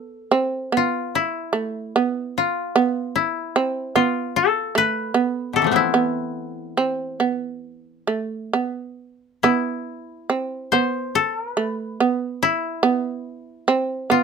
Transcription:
0.00 0.33 B3 medium
0.00 1.19 A4 medium
0.31 0.74 C4 medium
0.72 1.52 B3 medium
0.77 1.21 F4 medium
1.15 2.44 E4 medium
1.53 1.95 A3 medium
1.96 2.74 B3 medium
2.38 3.22 F4 medium
2.76 3.56 B3 medium
3.16 4.02 E4 medium
3.56 3.97 C4 medium
3.96 4.75 B3 medium
3.96 5.68 F4 medium
4.36 5.56 A4 medium
4.75 5.14 A3 medium
4.75 5.63 B4 medium
5.14 5.93 B3 medium
5.53 5.70 B2 soft
5.53 5.77 C3 soft
5.53 7.46 A4 medium
5.62 9.00 E3 soft
5.62 5.82 F3 soft
5.67 8.55 A3 soft
5.71 8.41 B3 soft
5.71 8.32 C4 soft
5.76 8.49 E4 medium
5.94 6.78 B3 medium
6.77 7.21 C4 medium
7.20 8.07 B3 soft
8.07 8.53 A3 soft
8.53 9.43 B3 soft
9.43 10.30 B3 medium
9.43 11.70 E4 medium
10.30 10.72 C4 medium
10.72 11.56 B3 medium
10.72 11.21 C5 medium
11.15 11.38 A4 medium
11.38 11.52 A#4 medium
11.52 12.93 B4 medium
11.57 12.00 A3 medium
12.00 12.82 B3 medium
12.43 14.17 E4 medium
12.83 13.67 B3 medium
13.68 14.09 C4 medium
14.10 14.23 B3 medium
14.10 14.23 F4 medium

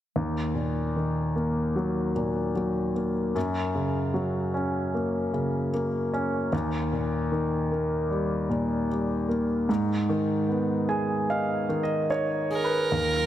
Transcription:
0.16 3.32 D#2 soft
0.55 2.12 A#2 soft
0.96 2.52 D#3 soft
1.36 2.92 A#3 soft
1.76 2.54 F#3 soft
2.16 3.32 A#2 soft
2.55 3.33 F#3 soft
2.96 3.34 A#3 soft
3.35 6.49 F#2 medium
3.75 5.30 C#3 soft
4.14 5.69 F#3 soft
4.54 6.09 C#4 soft
4.94 5.72 A#3 soft
5.33 6.49 C#3 soft
5.74 6.51 A#3 soft
6.13 6.52 C#4 soft
6.53 9.65 D#2 medium
6.93 8.46 A#2 soft
7.32 8.86 D#3 soft
7.72 9.26 A#3 soft
8.10 8.88 G3 soft
8.49 9.65 A#2 soft
8.90 9.67 G3 soft
9.29 9.68 A#3 soft
9.69 12.87 G#2 medium
10.09 11.66 D#3 soft
10.49 12.06 B3 soft
10.89 12.47 G#4 soft
10.89 11.26 G#5 soft
11.30 12.09 D#4 soft
11.30 11.80 F5 medium
11.69 12.87 D#3 soft
11.83 12.08 D#5 medium
12.10 12.89 D#4 soft
12.10 12.61 C#5 medium
12.51 12.90 G#4 soft
12.51 13.26 A#4 medium
12.64 12.89 B4 medium
12.92 13.26 D#2 medium

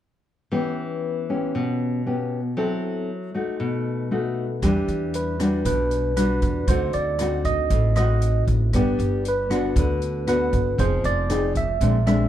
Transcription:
0.52 1.52 E3 medium
0.52 1.25 B3 medium
0.52 1.25 C#4 soft
0.52 1.25 G4 medium
1.29 2.02 B3 medium
1.29 2.02 C#4 medium
1.29 2.02 G4 medium
1.55 2.55 B2 medium
2.06 2.39 B3 soft
2.06 2.39 C#4 soft
2.06 2.39 G4 medium
2.57 3.34 F#3 medium
2.57 3.08 C4 medium
2.57 3.08 E4 medium
2.57 3.09 A4 medium
3.34 4.07 A3 medium
3.34 4.07 D#4 soft
3.34 4.08 F#4 medium
3.60 4.60 B2 medium
4.11 4.44 A3 soft
4.11 4.44 D#4 soft
4.11 4.44 F#4 medium
4.62 4.86 E2 medium
4.62 5.63 E3 medium
4.62 5.36 G3 medium
4.62 5.36 D4 medium
4.62 5.16 G4 medium
4.62 kick medium
4.62 cross-stick medium
4.62 closed hi-hat soft
4.88 5.61 E2 medium
4.88 closed hi-hat soft
5.14 5.65 B4 medium
5.14 closed hi-hat soft
5.40 6.13 G3 medium
5.40 6.13 D4 medium
5.40 6.13 F#4 medium
5.40 cross-stick medium
5.40 closed hi-hat soft
5.65 6.38 B1 medium
5.65 6.65 B2 medium
5.65 6.16 B4 medium
5.65 kick medium
5.65 closed hi-hat soft
5.91 closed hi-hat soft
6.17 6.66 G3 medium
6.17 6.66 D4 medium
6.17 6.66 F#4 medium
6.17 6.70 B4 medium
6.17 cross-stick medium
6.17 closed hi-hat soft
6.42 6.66 E2 medium
6.42 kick medium
6.42 closed hi-hat soft
6.67 6.91 D2 medium
6.67 7.68 D3 medium
6.67 7.15 C4 medium
6.67 7.16 D#4 medium
6.67 7.16 F#4 medium
6.67 6.95 C5 medium
6.67 kick medium
6.67 closed hi-hat soft
6.93 7.67 D2 medium
6.93 7.46 D5 medium
6.93 closed hi-hat soft
7.19 7.92 C4 medium
7.19 7.93 D#4 medium
7.19 7.93 F#4 medium
7.19 cross-stick medium
7.19 closed hi-hat soft
7.45 7.95 D#5 loud
7.45 kick soft
7.45 closed hi-hat soft
7.70 8.43 A1 medium
7.70 8.71 A2 medium
7.70 kick medium
7.70 closed hi-hat soft
7.96 8.69 C4 medium
7.96 8.70 D#4 medium
7.96 8.70 F#4 medium
7.96 8.44 D#5 medium
7.96 cross-stick medium
7.96 closed hi-hat soft
8.22 closed hi-hat soft
8.47 8.71 A1 medium
8.47 kick medium
8.47 closed hi-hat soft
8.73 8.97 G1 medium
8.73 9.74 G3 medium
8.73 9.46 B3 medium
8.73 9.47 D4 medium
8.73 9.22 G4 medium
8.73 kick medium
8.73 cross-stick soft
8.73 closed hi-hat soft
8.99 9.72 G1 medium
8.99 closed hi-hat soft
9.25 9.74 B4 medium
9.25 closed hi-hat soft
9.50 10.23 B3 medium
9.50 10.23 D4 medium
9.50 10.23 F#4 medium
9.50 cross-stick medium
9.50 closed hi-hat soft
9.76 10.49 D2 medium
9.76 10.76 D3 medium
9.76 10.28 B4 medium
9.76 kick medium
9.76 closed hi-hat soft
10.02 closed hi-hat soft
10.27 10.76 B3 medium
10.27 10.76 D4 soft
10.27 10.77 F#4 medium
10.27 10.81 B4 medium
10.27 cross-stick medium
10.27 closed hi-hat soft
10.53 10.77 G1 medium
10.53 kick medium
10.53 closed hi-hat soft
10.78 11.02 F1 medium
10.78 11.78 F3 medium
10.78 11.25 C4 medium
10.78 11.26 D#4 medium
10.78 11.26 G#4 medium
10.78 11.05 C5 medium
10.78 kick medium
10.78 closed hi-hat soft
11.04 11.77 F1 medium
11.04 11.52 D5 medium
11.04 closed hi-hat soft
11.30 11.64 C4 medium
11.30 11.64 D#4 medium
11.30 11.65 G#4 medium
11.30 cross-stick medium
11.30 closed hi-hat soft
11.55 12.06 E5 medium
11.55 kick soft
11.55 closed hi-hat soft
11.81 12.29 A#1 medium
11.81 12.29 A#2 medium
11.81 11.96 G#3 medium
11.81 11.96 C4 soft
11.81 11.96 D4 medium
11.81 kick medium
11.81 closed hi-hat soft
12.06 12.29 G#3 medium
12.06 12.29 C4 medium
12.06 12.29 D4 medium
12.06 12.29 E5 medium
12.06 cross-stick medium
12.06 closed hi-hat soft

